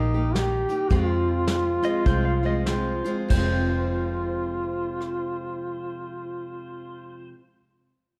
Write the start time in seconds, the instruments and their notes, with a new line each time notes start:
Already playing: fingered electric bass A#1, steel-string acoustic guitar D#3 A#3 D#4 G4, duduk D#4
0.14 steel-string acoustic guitar A#3 D#4 G4
0.35 steel-string acoustic guitar D#3 A#3 D#4 G4, duduk G4, snare, closed hi-hat
0.69 steel-string acoustic guitar A#3 D#4 G4, closed hi-hat
0.89 steel-string acoustic guitar F2 C3 F3 G#3 C4 F4, fingered electric bass F2, duduk F#4, kick, closed hi-hat
1.07 duduk F4
1.47 snare, closed hi-hat
1.83 steel-string acoustic guitar F3 G#3 C4 F4, pedal steel guitar D#5, closed hi-hat
2.06 fingered electric bass C2, steel-string acoustic guitar F3 G#3 C4 F4, pedal steel guitar C5, kick, closed hi-hat
2.25 pedal steel guitar F5
2.43 steel-string acoustic guitar F3 G#3 C4 F4, pedal steel guitar D#5
2.66 steel-string acoustic guitar F3 G#3 C4, pedal steel guitar C5, snare, closed hi-hat
2.71 steel-string acoustic guitar F4
3.04 steel-string acoustic guitar F3 G#3 C4 F4, closed hi-hat
3.28 fingered electric bass F1, steel-string acoustic guitar F2 C3 F3, duduk F4, pedal steel guitar C5, kick, crash
3.34 steel-string acoustic guitar G#3 C4 F4
5.01 cross-stick